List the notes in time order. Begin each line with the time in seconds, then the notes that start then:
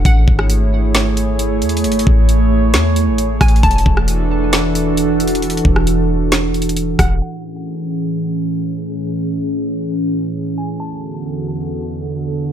0.05 A1 A3 E4 G#4 C#5 F#5, kick, closed hi-hat
0.28 G#1, kick
0.39 cross-stick
0.50 closed hi-hat
0.95 snare, closed hi-hat
1.17 closed hi-hat
1.39 closed hi-hat
1.62 E2, closed hi-hat
1.69 closed hi-hat
1.77 closed hi-hat
1.84 G#1, closed hi-hat
1.92 closed hi-hat
1.99 closed hi-hat
2.07 A1, kick
2.29 closed hi-hat
2.74 E2, snare, closed hi-hat
2.96 closed hi-hat
3.07 A1
3.18 closed hi-hat
3.41 A1 G#5, kick, cross-stick, closed hi-hat
3.48 closed hi-hat
3.56 closed hi-hat
3.63 E1 E3 D4 F#4 A4 A5, kick, closed hi-hat
3.71 closed hi-hat
3.78 closed hi-hat
3.86 E1, kick
3.97 cross-stick
4.08 closed hi-hat
4.53 snare, closed hi-hat
4.75 closed hi-hat
4.97 closed hi-hat
5.20 closed hi-hat
5.28 closed hi-hat
5.35 closed hi-hat
5.42 closed hi-hat
5.50 closed hi-hat
5.57 closed hi-hat
5.65 E1, kick
5.76 cross-stick
5.87 closed hi-hat
6.32 snare, closed hi-hat
6.54 closed hi-hat
6.62 closed hi-hat
6.69 closed hi-hat
6.77 closed hi-hat
6.99 E1 F#5, kick, cross-stick, closed hi-hat
7.21 A2 E3 C#4 G#4 F#5
10.58 G#5
10.80 E2 D3 F#4 A4 A5